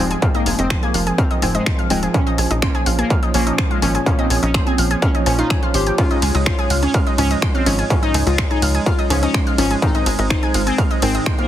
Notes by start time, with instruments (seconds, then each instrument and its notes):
Already playing: analog synth pad G#3 F4 C5
0.00 analog synth bass D#1, synth stab G#2 F3 C4
0.11 synth arpeggio sound G#4 G#5, closed hi-hat
0.22 synth stab G#2 F3 C4, analog polysynth F3, synth arpeggio sound F4 F5, analog synth pad A#4, kick, closed hi-hat
0.34 analog polysynth A#3, synth arpeggio sound D#4 D#5, closed hi-hat
0.46 analog synth bass F1, analog polysynth F3, synth arpeggio sound G#4 G#5, open hi-hat
0.58 analog synth bass F1, analog polysynth C4, synth arpeggio sound D#4 D#5, closed hi-hat
0.70 analog polysynth F3, synth arpeggio sound C5 C6, finger snap, kick, closed hi-hat
0.82 analog polysynth A#3, synth arpeggio sound G#4 G#5, closed hi-hat
0.94 analog synth bass F1, analog polysynth F3, synth arpeggio sound F4 F5, open hi-hat
1.07 analog polysynth F3, synth arpeggio sound G#4 G#5, closed hi-hat
1.18 analog polysynth C4, synth arpeggio sound F5 F6, kick, closed hi-hat
1.31 analog polysynth F3, synth arpeggio sound D#4 D#5, closed hi-hat
1.42 analog synth bass F1, synth stab G#2 F3 C4, analog polysynth F3, synth arpeggio sound G#4 G#5, open hi-hat
1.55 analog polysynth G#3, synth arpeggio sound D#4 D#5, closed hi-hat
1.66 analog polysynth F3, synth arpeggio sound C5 C6, finger snap, kick, closed hi-hat
1.79 analog polysynth F3, synth arpeggio sound F4 F5, closed hi-hat
1.90 analog synth bass D#1, synth stab G#2 F3 C4, analog polysynth G#3, synth arpeggio sound G#4 G#5, open hi-hat
2.03 analog polysynth F3, synth arpeggio sound G#4 G#5, closed hi-hat
2.14 synth stab A#2 F3 C#4, analog synth pad A#3 C#5, analog polysynth C#4, synth arpeggio sound F4 F5, kick, closed hi-hat
2.26 analog polysynth F3, synth arpeggio sound D#4 D#5, closed hi-hat
2.38 analog synth bass A#1, analog polysynth F3, synth arpeggio sound G#4 G#5, open hi-hat
2.50 analog synth bass A#1, analog polysynth F3, synth arpeggio sound D#4 D#5, closed hi-hat
2.62 analog polysynth C#4, synth arpeggio sound C5 C6, finger snap, kick, closed hi-hat
2.74 analog polysynth F3, synth arpeggio sound G#4 G#5, closed hi-hat
2.86 analog synth bass A#1, analog polysynth F3, synth arpeggio sound F4 F5, open hi-hat
2.99 analog polysynth A#3, synth arpeggio sound G#4 G#5, closed hi-hat
3.10 analog polysynth F3, synth arpeggio sound F5 F6, kick, closed hi-hat
3.23 analog polysynth F3, synth arpeggio sound D#4 D#5, closed hi-hat
3.34 analog synth bass A#1, synth stab A#2 F3 C#4, analog polysynth A#3, synth arpeggio sound G#4 G#5, open hi-hat
3.47 analog polysynth F3, synth arpeggio sound D#4 D#5, closed hi-hat
3.58 analog polysynth F3, synth arpeggio sound C5 C6, finger snap, kick, closed hi-hat
3.71 analog polysynth G#3, synth arpeggio sound F4 F5, closed hi-hat
3.82 analog synth bass G#1, synth stab A#2 F3 C#4, analog polysynth F3, synth arpeggio sound G#4 G#5, open hi-hat
3.95 synth arpeggio sound G#4 G#5, closed hi-hat
4.06 synth stab A#2 F3 C#4, analog polysynth F3, synth arpeggio sound F4 F5, kick, closed hi-hat
4.19 analog polysynth C4, synth arpeggio sound D#4 D#5, closed hi-hat
4.30 analog synth bass A#1, analog polysynth F3, synth arpeggio sound G#4 G#5, open hi-hat
4.43 analog synth bass A#1, analog polysynth C#4, synth arpeggio sound D#4 D#5, closed hi-hat
4.54 analog polysynth F3, synth arpeggio sound C5 C6, finger snap, kick, closed hi-hat
4.67 analog polysynth C4, synth arpeggio sound G#4 G#5, closed hi-hat
4.78 analog synth bass A#1, analog polysynth F3, synth arpeggio sound F4 F5, open hi-hat
4.91 analog polysynth F3, synth arpeggio sound G#4 G#5, closed hi-hat
5.02 analog polysynth C#4, synth arpeggio sound F5 F6, finger snap, kick, closed hi-hat
5.15 analog polysynth F3, synth arpeggio sound D#4 D#5, closed hi-hat
5.26 analog synth bass A#1, synth stab A#2 F3 C#4, analog polysynth F3, synth arpeggio sound G#4 G#5, open hi-hat
5.39 analog polysynth D#4, synth arpeggio sound F4 F5, closed hi-hat
5.50 analog polysynth F3, synth arpeggio sound G#4 G#5, finger snap, kick, closed hi-hat
5.63 analog polysynth F3, synth arpeggio sound F4 F5, closed hi-hat
5.74 analog synth bass G#1, analog polysynth G4, synth arpeggio sound C5 C6, open hi-hat
5.87 analog polysynth F3, synth arpeggio sound G4 G5, closed hi-hat
5.98 synth stab G#2 F3 C#4, analog synth pad G#3, synth arpeggio sound F4 F5, analog polysynth F4, kick, closed hi-hat, ride
6.11 analog polysynth G#3, synth arpeggio sound D#4 D#5, closed hi-hat
6.22 analog synth bass C#2, analog polysynth G#3, synth arpeggio sound G#4 G#5, open hi-hat, ride
6.35 analog synth bass C#2, analog polysynth G#3, synth arpeggio sound D#4 D#5, closed hi-hat
6.46 analog polysynth F4, synth arpeggio sound C5 C6, finger snap, kick, closed hi-hat
6.59 analog polysynth G#3, synth arpeggio sound G#4 G#5, closed hi-hat
6.70 analog synth bass C#2, analog polysynth G#3, synth arpeggio sound F4 F5, open hi-hat, ride
6.83 analog polysynth C#4, synth arpeggio sound G#4 G#5, closed hi-hat
6.94 analog polysynth G#3, synth arpeggio sound F5 F6, kick, closed hi-hat, ride
7.07 analog polysynth G#3, synth arpeggio sound D#4 D#5, closed hi-hat
7.18 analog synth bass C#2, synth stab G#2 F3 C#4, analog polysynth C#4, synth arpeggio sound G#4 G#5, open hi-hat, ride
7.31 analog polysynth G#3, synth arpeggio sound D#4 D#5, closed hi-hat
7.42 analog polysynth G#3, synth arpeggio sound C5 C6, finger snap, kick, closed hi-hat
7.55 analog polysynth C4, synth arpeggio sound F4 F5, closed hi-hat
7.66 analog synth bass G#1, synth stab G#2 F3 C#4, analog polysynth G#3, synth arpeggio sound G#4 G#5, open hi-hat, ride
7.79 synth arpeggio sound G#4 G#5, closed hi-hat
7.90 synth stab G#2 F3 C#4, analog polysynth G#3, synth arpeggio sound F4 F5, kick, closed hi-hat, ride
8.03 synth arpeggio sound D#4 D#5, analog polysynth D#4, closed hi-hat
8.14 analog synth bass C#2, analog polysynth G#3, synth arpeggio sound G#4 G#5, open hi-hat, ride
8.27 analog synth bass C#2, synth arpeggio sound D#4 D#5, analog polysynth F4, closed hi-hat
8.38 analog polysynth G#3, synth arpeggio sound C5 C6, finger snap, kick, closed hi-hat, ride
8.51 analog polysynth D#4, synth arpeggio sound G#4 G#5, closed hi-hat
8.62 analog synth bass C#2, analog polysynth G#3, synth arpeggio sound F4 F5, open hi-hat, ride
8.75 analog polysynth G#3, synth arpeggio sound G#4 G#5, closed hi-hat
8.86 analog polysynth F4, synth arpeggio sound F5 F6, kick, closed hi-hat, ride
8.99 analog polysynth G#3, synth arpeggio sound D#4 D#5, closed hi-hat
9.10 analog synth bass C#2, synth stab G#2 F3 C#4, analog polysynth G#3, synth arpeggio sound G#4 G#5, open hi-hat, ride
9.23 analog polysynth C#4, synth arpeggio sound D#4 D#5, closed hi-hat
9.34 analog polysynth G#3, synth arpeggio sound C5 C6, finger snap, kick, closed hi-hat, ride
9.47 analog polysynth G#3, synth arpeggio sound F4 F5, closed hi-hat
9.58 analog synth bass G#1, synth stab G#2 F3 C#4, analog polysynth C#4, synth arpeggio sound G#4 G#5, open hi-hat, ride
9.71 analog polysynth G#3, synth arpeggio sound G#4 G#5, closed hi-hat
9.82 synth stab G#2 D#3 C4, analog polysynth D#4, analog synth pad D#4 C5, synth arpeggio sound F4 F5, kick, closed hi-hat, ride
9.95 analog polysynth G#3, synth arpeggio sound D#4 D#5, closed hi-hat
10.06 analog synth bass G#1, analog polysynth G#3, synth arpeggio sound G#4 G#5, open hi-hat, ride
10.19 analog synth bass G#1, analog polysynth G#3, synth arpeggio sound D#4 D#5, closed hi-hat
10.30 analog polysynth D#4, synth arpeggio sound C5 C6, finger snap, kick, closed hi-hat
10.43 analog polysynth G#3, synth arpeggio sound G#4 G#5, closed hi-hat
10.54 analog synth bass G#1, analog polysynth G#3, synth arpeggio sound F4 F5, open hi-hat, ride
10.67 analog polysynth C4, synth arpeggio sound G#4 G#5, closed hi-hat
10.78 analog polysynth G#3, synth arpeggio sound F5 F6, kick, closed hi-hat, ride
10.91 analog polysynth G#3, synth arpeggio sound D#4 D#5, closed hi-hat
11.02 analog synth bass G#1, synth stab G#2 D#3 C4, analog polysynth C4, synth arpeggio sound G#4 G#5, open hi-hat, ride
11.15 analog polysynth G#3, synth arpeggio sound D#4 D#5, closed hi-hat
11.26 analog polysynth G#3, synth arpeggio sound C5 C6, finger snap, kick, closed hi-hat, ride
11.38 analog polysynth A#3, synth arpeggio sound F4 F5, closed hi-hat